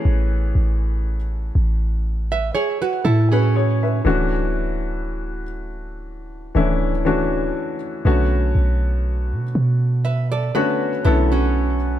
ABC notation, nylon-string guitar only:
X:1
M:4/4
L:1/16
Q:"Swing 16ths" 1/4=60
K:Bdor
V:1 name="Nylon-string guitar"
z8 z [Be] [Gc] [FB] [EA] [CG]3 | z16 | z8 [Be] [Ad] [FB]2 [EA] [CF]3 |]